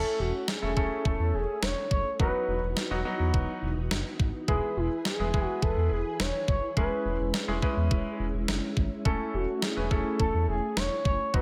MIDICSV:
0, 0, Header, 1, 6, 480
1, 0, Start_track
1, 0, Tempo, 571429
1, 1845, Time_signature, 4, 2, 24, 8
1, 9591, End_track
2, 0, Start_track
2, 0, Title_t, "Analog synth lead"
2, 0, Program_c, 0, 81
2, 0, Note_on_c, 0, 69, 88
2, 163, Note_on_c, 0, 66, 84
2, 176, Note_off_c, 0, 69, 0
2, 403, Note_on_c, 0, 68, 97
2, 415, Note_off_c, 0, 66, 0
2, 883, Note_on_c, 0, 69, 102
2, 896, Note_off_c, 0, 68, 0
2, 1123, Note_on_c, 0, 68, 98
2, 1136, Note_off_c, 0, 69, 0
2, 1364, Note_on_c, 0, 73, 107
2, 1376, Note_off_c, 0, 68, 0
2, 1599, Note_off_c, 0, 73, 0
2, 1604, Note_on_c, 0, 73, 102
2, 1828, Note_off_c, 0, 73, 0
2, 1843, Note_on_c, 0, 71, 94
2, 2530, Note_off_c, 0, 71, 0
2, 3765, Note_on_c, 0, 68, 92
2, 4004, Note_on_c, 0, 64, 82
2, 4017, Note_off_c, 0, 68, 0
2, 4240, Note_off_c, 0, 64, 0
2, 4245, Note_on_c, 0, 68, 97
2, 4590, Note_off_c, 0, 68, 0
2, 4590, Note_on_c, 0, 66, 97
2, 4726, Note_on_c, 0, 69, 106
2, 4738, Note_off_c, 0, 66, 0
2, 4966, Note_on_c, 0, 68, 96
2, 4979, Note_off_c, 0, 69, 0
2, 5205, Note_on_c, 0, 73, 109
2, 5218, Note_off_c, 0, 68, 0
2, 5441, Note_off_c, 0, 73, 0
2, 5446, Note_on_c, 0, 73, 101
2, 5668, Note_off_c, 0, 73, 0
2, 5688, Note_on_c, 0, 71, 100
2, 6372, Note_off_c, 0, 71, 0
2, 7606, Note_on_c, 0, 69, 91
2, 7846, Note_on_c, 0, 66, 87
2, 7859, Note_off_c, 0, 69, 0
2, 8087, Note_on_c, 0, 68, 93
2, 8100, Note_off_c, 0, 66, 0
2, 8560, Note_off_c, 0, 68, 0
2, 8565, Note_on_c, 0, 69, 102
2, 8788, Note_off_c, 0, 69, 0
2, 8805, Note_on_c, 0, 68, 98
2, 9045, Note_on_c, 0, 73, 109
2, 9057, Note_off_c, 0, 68, 0
2, 9280, Note_off_c, 0, 73, 0
2, 9285, Note_on_c, 0, 73, 108
2, 9525, Note_on_c, 0, 71, 101
2, 9537, Note_off_c, 0, 73, 0
2, 9591, Note_off_c, 0, 71, 0
2, 9591, End_track
3, 0, Start_track
3, 0, Title_t, "Grand piano"
3, 0, Program_c, 1, 0
3, 0, Note_on_c, 1, 57, 71
3, 0, Note_on_c, 1, 61, 64
3, 0, Note_on_c, 1, 64, 66
3, 0, Note_on_c, 1, 69, 80
3, 249, Note_off_c, 1, 57, 0
3, 249, Note_off_c, 1, 61, 0
3, 249, Note_off_c, 1, 64, 0
3, 249, Note_off_c, 1, 69, 0
3, 524, Note_on_c, 1, 57, 70
3, 524, Note_on_c, 1, 61, 63
3, 524, Note_on_c, 1, 64, 65
3, 524, Note_on_c, 1, 69, 77
3, 589, Note_off_c, 1, 57, 0
3, 589, Note_off_c, 1, 61, 0
3, 589, Note_off_c, 1, 64, 0
3, 589, Note_off_c, 1, 69, 0
3, 644, Note_on_c, 1, 57, 70
3, 644, Note_on_c, 1, 61, 67
3, 644, Note_on_c, 1, 64, 66
3, 644, Note_on_c, 1, 69, 79
3, 1163, Note_off_c, 1, 57, 0
3, 1163, Note_off_c, 1, 61, 0
3, 1163, Note_off_c, 1, 64, 0
3, 1163, Note_off_c, 1, 69, 0
3, 1844, Note_on_c, 1, 54, 71
3, 1844, Note_on_c, 1, 59, 67
3, 1844, Note_on_c, 1, 63, 65
3, 1844, Note_on_c, 1, 66, 80
3, 2169, Note_off_c, 1, 54, 0
3, 2169, Note_off_c, 1, 59, 0
3, 2169, Note_off_c, 1, 63, 0
3, 2169, Note_off_c, 1, 66, 0
3, 2444, Note_on_c, 1, 54, 86
3, 2444, Note_on_c, 1, 59, 77
3, 2444, Note_on_c, 1, 66, 95
3, 2445, Note_on_c, 1, 63, 78
3, 2509, Note_off_c, 1, 54, 0
3, 2509, Note_off_c, 1, 59, 0
3, 2509, Note_off_c, 1, 63, 0
3, 2509, Note_off_c, 1, 66, 0
3, 2563, Note_on_c, 1, 54, 85
3, 2564, Note_on_c, 1, 59, 79
3, 2564, Note_on_c, 1, 63, 78
3, 2564, Note_on_c, 1, 66, 94
3, 3083, Note_off_c, 1, 54, 0
3, 3083, Note_off_c, 1, 59, 0
3, 3083, Note_off_c, 1, 63, 0
3, 3083, Note_off_c, 1, 66, 0
3, 3765, Note_on_c, 1, 56, 72
3, 3765, Note_on_c, 1, 59, 66
3, 3765, Note_on_c, 1, 64, 67
3, 3765, Note_on_c, 1, 68, 78
3, 4089, Note_off_c, 1, 56, 0
3, 4089, Note_off_c, 1, 59, 0
3, 4089, Note_off_c, 1, 64, 0
3, 4089, Note_off_c, 1, 68, 0
3, 4365, Note_on_c, 1, 56, 70
3, 4365, Note_on_c, 1, 59, 66
3, 4365, Note_on_c, 1, 64, 66
3, 4365, Note_on_c, 1, 68, 79
3, 4429, Note_off_c, 1, 56, 0
3, 4429, Note_off_c, 1, 59, 0
3, 4430, Note_off_c, 1, 64, 0
3, 4430, Note_off_c, 1, 68, 0
3, 4485, Note_on_c, 1, 56, 71
3, 4485, Note_on_c, 1, 59, 66
3, 4485, Note_on_c, 1, 64, 67
3, 4485, Note_on_c, 1, 68, 77
3, 5004, Note_off_c, 1, 56, 0
3, 5004, Note_off_c, 1, 59, 0
3, 5004, Note_off_c, 1, 64, 0
3, 5004, Note_off_c, 1, 68, 0
3, 5685, Note_on_c, 1, 56, 72
3, 5685, Note_on_c, 1, 61, 65
3, 5685, Note_on_c, 1, 64, 68
3, 5685, Note_on_c, 1, 68, 80
3, 6009, Note_off_c, 1, 56, 0
3, 6009, Note_off_c, 1, 61, 0
3, 6009, Note_off_c, 1, 64, 0
3, 6009, Note_off_c, 1, 68, 0
3, 6284, Note_on_c, 1, 61, 78
3, 6284, Note_on_c, 1, 64, 77
3, 6284, Note_on_c, 1, 68, 97
3, 6285, Note_on_c, 1, 56, 84
3, 6349, Note_off_c, 1, 56, 0
3, 6349, Note_off_c, 1, 61, 0
3, 6349, Note_off_c, 1, 64, 0
3, 6349, Note_off_c, 1, 68, 0
3, 6404, Note_on_c, 1, 56, 82
3, 6404, Note_on_c, 1, 61, 77
3, 6404, Note_on_c, 1, 64, 77
3, 6404, Note_on_c, 1, 71, 93
3, 6923, Note_off_c, 1, 56, 0
3, 6923, Note_off_c, 1, 61, 0
3, 6923, Note_off_c, 1, 64, 0
3, 6923, Note_off_c, 1, 71, 0
3, 7603, Note_on_c, 1, 57, 72
3, 7603, Note_on_c, 1, 61, 67
3, 7603, Note_on_c, 1, 64, 65
3, 7603, Note_on_c, 1, 69, 79
3, 7928, Note_off_c, 1, 57, 0
3, 7928, Note_off_c, 1, 61, 0
3, 7928, Note_off_c, 1, 64, 0
3, 7928, Note_off_c, 1, 69, 0
3, 8203, Note_on_c, 1, 57, 71
3, 8203, Note_on_c, 1, 61, 66
3, 8203, Note_on_c, 1, 64, 68
3, 8203, Note_on_c, 1, 71, 76
3, 8269, Note_off_c, 1, 57, 0
3, 8269, Note_off_c, 1, 61, 0
3, 8269, Note_off_c, 1, 64, 0
3, 8269, Note_off_c, 1, 71, 0
3, 8323, Note_on_c, 1, 61, 65
3, 8323, Note_on_c, 1, 69, 77
3, 8324, Note_on_c, 1, 57, 70
3, 8324, Note_on_c, 1, 64, 65
3, 8843, Note_off_c, 1, 57, 0
3, 8843, Note_off_c, 1, 61, 0
3, 8843, Note_off_c, 1, 64, 0
3, 8843, Note_off_c, 1, 69, 0
3, 9523, Note_on_c, 1, 59, 67
3, 9523, Note_on_c, 1, 66, 77
3, 9524, Note_on_c, 1, 54, 72
3, 9524, Note_on_c, 1, 63, 67
3, 9591, Note_off_c, 1, 54, 0
3, 9591, Note_off_c, 1, 59, 0
3, 9591, Note_off_c, 1, 63, 0
3, 9591, Note_off_c, 1, 66, 0
3, 9591, End_track
4, 0, Start_track
4, 0, Title_t, "String machine"
4, 0, Program_c, 2, 50
4, 0, Note_on_c, 2, 57, 76
4, 0, Note_on_c, 2, 61, 73
4, 0, Note_on_c, 2, 64, 86
4, 1825, Note_off_c, 2, 57, 0
4, 1825, Note_off_c, 2, 61, 0
4, 1825, Note_off_c, 2, 64, 0
4, 1844, Note_on_c, 2, 63, 70
4, 1845, Note_on_c, 2, 52, 76
4, 1845, Note_on_c, 2, 59, 72
4, 1845, Note_on_c, 2, 66, 84
4, 3745, Note_off_c, 2, 52, 0
4, 3745, Note_off_c, 2, 59, 0
4, 3745, Note_off_c, 2, 63, 0
4, 3745, Note_off_c, 2, 66, 0
4, 3764, Note_on_c, 2, 52, 77
4, 3764, Note_on_c, 2, 64, 71
4, 3764, Note_on_c, 2, 68, 70
4, 3764, Note_on_c, 2, 71, 85
4, 5665, Note_off_c, 2, 52, 0
4, 5665, Note_off_c, 2, 68, 0
4, 5665, Note_off_c, 2, 71, 0
4, 5684, Note_on_c, 2, 56, 76
4, 5684, Note_on_c, 2, 61, 72
4, 7571, Note_off_c, 2, 64, 0
4, 7585, Note_off_c, 2, 56, 0
4, 7605, Note_on_c, 2, 57, 78
4, 7605, Note_on_c, 2, 64, 87
4, 9491, Note_off_c, 2, 61, 0
4, 9505, Note_off_c, 2, 57, 0
4, 9505, Note_off_c, 2, 64, 0
4, 9525, Note_on_c, 2, 52, 79
4, 9525, Note_on_c, 2, 59, 69
4, 9525, Note_on_c, 2, 63, 68
4, 9525, Note_on_c, 2, 66, 85
4, 9591, Note_off_c, 2, 52, 0
4, 9591, Note_off_c, 2, 59, 0
4, 9591, Note_off_c, 2, 63, 0
4, 9591, Note_off_c, 2, 66, 0
4, 9591, End_track
5, 0, Start_track
5, 0, Title_t, "Analog synth bass"
5, 0, Program_c, 3, 38
5, 164, Note_on_c, 3, 28, 102
5, 267, Note_off_c, 3, 28, 0
5, 525, Note_on_c, 3, 28, 98
5, 627, Note_off_c, 3, 28, 0
5, 644, Note_on_c, 3, 28, 95
5, 747, Note_off_c, 3, 28, 0
5, 884, Note_on_c, 3, 28, 110
5, 987, Note_off_c, 3, 28, 0
5, 1004, Note_on_c, 3, 40, 94
5, 1107, Note_off_c, 3, 40, 0
5, 1124, Note_on_c, 3, 28, 100
5, 1227, Note_off_c, 3, 28, 0
5, 1364, Note_on_c, 3, 28, 94
5, 1467, Note_off_c, 3, 28, 0
5, 1605, Note_on_c, 3, 30, 89
5, 1707, Note_off_c, 3, 30, 0
5, 1845, Note_on_c, 3, 28, 101
5, 1947, Note_off_c, 3, 28, 0
5, 2084, Note_on_c, 3, 28, 102
5, 2187, Note_off_c, 3, 28, 0
5, 2204, Note_on_c, 3, 28, 99
5, 2307, Note_off_c, 3, 28, 0
5, 2444, Note_on_c, 3, 28, 99
5, 2547, Note_off_c, 3, 28, 0
5, 2684, Note_on_c, 3, 40, 92
5, 2787, Note_off_c, 3, 40, 0
5, 2805, Note_on_c, 3, 28, 106
5, 2907, Note_off_c, 3, 28, 0
5, 3044, Note_on_c, 3, 28, 101
5, 3147, Note_off_c, 3, 28, 0
5, 3164, Note_on_c, 3, 28, 91
5, 3267, Note_off_c, 3, 28, 0
5, 3284, Note_on_c, 3, 30, 89
5, 3387, Note_off_c, 3, 30, 0
5, 3525, Note_on_c, 3, 32, 88
5, 3627, Note_off_c, 3, 32, 0
5, 3765, Note_on_c, 3, 28, 98
5, 3867, Note_off_c, 3, 28, 0
5, 4004, Note_on_c, 3, 28, 95
5, 4107, Note_off_c, 3, 28, 0
5, 4364, Note_on_c, 3, 28, 97
5, 4467, Note_off_c, 3, 28, 0
5, 4484, Note_on_c, 3, 28, 94
5, 4587, Note_off_c, 3, 28, 0
5, 4724, Note_on_c, 3, 28, 98
5, 4827, Note_off_c, 3, 28, 0
5, 4845, Note_on_c, 3, 40, 103
5, 4947, Note_off_c, 3, 40, 0
5, 4965, Note_on_c, 3, 28, 100
5, 5067, Note_off_c, 3, 28, 0
5, 5205, Note_on_c, 3, 28, 111
5, 5307, Note_off_c, 3, 28, 0
5, 5445, Note_on_c, 3, 30, 83
5, 5547, Note_off_c, 3, 30, 0
5, 5685, Note_on_c, 3, 28, 99
5, 5787, Note_off_c, 3, 28, 0
5, 5925, Note_on_c, 3, 28, 88
5, 6027, Note_off_c, 3, 28, 0
5, 6045, Note_on_c, 3, 28, 93
5, 6147, Note_off_c, 3, 28, 0
5, 6284, Note_on_c, 3, 28, 93
5, 6387, Note_off_c, 3, 28, 0
5, 6525, Note_on_c, 3, 40, 92
5, 6627, Note_off_c, 3, 40, 0
5, 6645, Note_on_c, 3, 28, 101
5, 6747, Note_off_c, 3, 28, 0
5, 6885, Note_on_c, 3, 28, 101
5, 6987, Note_off_c, 3, 28, 0
5, 7005, Note_on_c, 3, 28, 104
5, 7107, Note_off_c, 3, 28, 0
5, 7125, Note_on_c, 3, 30, 93
5, 7227, Note_off_c, 3, 30, 0
5, 7365, Note_on_c, 3, 32, 81
5, 7467, Note_off_c, 3, 32, 0
5, 7605, Note_on_c, 3, 28, 105
5, 7707, Note_off_c, 3, 28, 0
5, 7845, Note_on_c, 3, 28, 102
5, 7947, Note_off_c, 3, 28, 0
5, 8205, Note_on_c, 3, 28, 98
5, 8307, Note_off_c, 3, 28, 0
5, 8324, Note_on_c, 3, 28, 102
5, 8427, Note_off_c, 3, 28, 0
5, 8565, Note_on_c, 3, 28, 107
5, 8667, Note_off_c, 3, 28, 0
5, 8684, Note_on_c, 3, 40, 97
5, 8787, Note_off_c, 3, 40, 0
5, 8804, Note_on_c, 3, 28, 103
5, 8907, Note_off_c, 3, 28, 0
5, 9044, Note_on_c, 3, 28, 95
5, 9147, Note_off_c, 3, 28, 0
5, 9284, Note_on_c, 3, 30, 90
5, 9387, Note_off_c, 3, 30, 0
5, 9524, Note_on_c, 3, 28, 107
5, 9591, Note_off_c, 3, 28, 0
5, 9591, End_track
6, 0, Start_track
6, 0, Title_t, "Drums"
6, 403, Note_on_c, 9, 38, 112
6, 487, Note_off_c, 9, 38, 0
6, 644, Note_on_c, 9, 36, 84
6, 728, Note_off_c, 9, 36, 0
6, 884, Note_on_c, 9, 36, 96
6, 968, Note_off_c, 9, 36, 0
6, 1366, Note_on_c, 9, 38, 114
6, 1450, Note_off_c, 9, 38, 0
6, 1604, Note_on_c, 9, 36, 100
6, 1688, Note_off_c, 9, 36, 0
6, 1845, Note_on_c, 9, 36, 102
6, 1929, Note_off_c, 9, 36, 0
6, 2324, Note_on_c, 9, 38, 109
6, 2408, Note_off_c, 9, 38, 0
6, 2804, Note_on_c, 9, 36, 94
6, 2888, Note_off_c, 9, 36, 0
6, 3286, Note_on_c, 9, 38, 115
6, 3370, Note_off_c, 9, 38, 0
6, 3525, Note_on_c, 9, 36, 97
6, 3609, Note_off_c, 9, 36, 0
6, 3765, Note_on_c, 9, 36, 103
6, 3849, Note_off_c, 9, 36, 0
6, 4244, Note_on_c, 9, 38, 108
6, 4328, Note_off_c, 9, 38, 0
6, 4484, Note_on_c, 9, 36, 87
6, 4568, Note_off_c, 9, 36, 0
6, 4725, Note_on_c, 9, 36, 96
6, 4809, Note_off_c, 9, 36, 0
6, 5206, Note_on_c, 9, 38, 117
6, 5290, Note_off_c, 9, 38, 0
6, 5445, Note_on_c, 9, 36, 100
6, 5529, Note_off_c, 9, 36, 0
6, 5685, Note_on_c, 9, 36, 102
6, 5769, Note_off_c, 9, 36, 0
6, 6164, Note_on_c, 9, 38, 114
6, 6248, Note_off_c, 9, 38, 0
6, 6404, Note_on_c, 9, 36, 87
6, 6488, Note_off_c, 9, 36, 0
6, 6645, Note_on_c, 9, 36, 102
6, 6729, Note_off_c, 9, 36, 0
6, 7126, Note_on_c, 9, 38, 119
6, 7210, Note_off_c, 9, 38, 0
6, 7365, Note_on_c, 9, 36, 99
6, 7449, Note_off_c, 9, 36, 0
6, 7605, Note_on_c, 9, 36, 101
6, 7689, Note_off_c, 9, 36, 0
6, 8084, Note_on_c, 9, 38, 112
6, 8168, Note_off_c, 9, 38, 0
6, 8324, Note_on_c, 9, 36, 84
6, 8408, Note_off_c, 9, 36, 0
6, 8564, Note_on_c, 9, 36, 98
6, 8648, Note_off_c, 9, 36, 0
6, 9046, Note_on_c, 9, 38, 120
6, 9130, Note_off_c, 9, 38, 0
6, 9285, Note_on_c, 9, 36, 98
6, 9369, Note_off_c, 9, 36, 0
6, 9525, Note_on_c, 9, 36, 102
6, 9591, Note_off_c, 9, 36, 0
6, 9591, End_track
0, 0, End_of_file